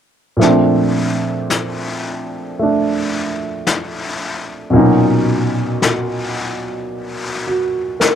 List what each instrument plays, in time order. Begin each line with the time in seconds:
0.37 grand piano A#2 F3 A3
0.41 grand piano C4 D4, brush sweep, snare
1.50 brush sweep, snare, hi-hat pedal
2.58 grand piano A3, brush sweep
2.63 grand piano D4
3.67 brush sweep, snare, hi-hat pedal
4.70 grand piano A#2 B2 F#3, brush sweep
4.74 grand piano C#4 D#4
5.82 brush sweep, snare, hi-hat pedal
6.91 brush sweep
7.47 grand piano F#4
8.00 grand piano A#4, brush sweep, snare, hi-hat pedal